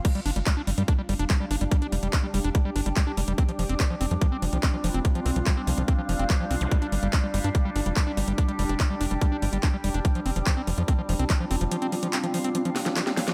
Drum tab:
CC |x---------------|----------------|----------------|----------------|
HH |xxoxx-oxx-oxx-ox|xxoxx-oxx-oxx-ox|xxoxx-oxx-oxx-ox|xxoxx-oxx-oxx-ox|
CP |----x-------x---|----x-------x---|----x-------x---|----x-------x---|
SD |----------------|----------------|----------------|----------------|
BD |o---o---o---o---|o---o---o---o---|o---o---o---o---|o---o---o---o---|

CC |----------------|----------------|----------------|----------------|
HH |xxoxx-oxx-oxx-ox|xxoxx-oxx-oxx-ox|xxoxx-oxx-oxx-ox|xxoxxxoxxxoxxxox|
CP |----x-------x---|----x-------x---|----x-------x---|----x-------x---|
SD |----------------|----------------|----------------|----------oooooo|
BD |o---o---o---o---|o---o---o---o---|o---o---o---o---|----------------|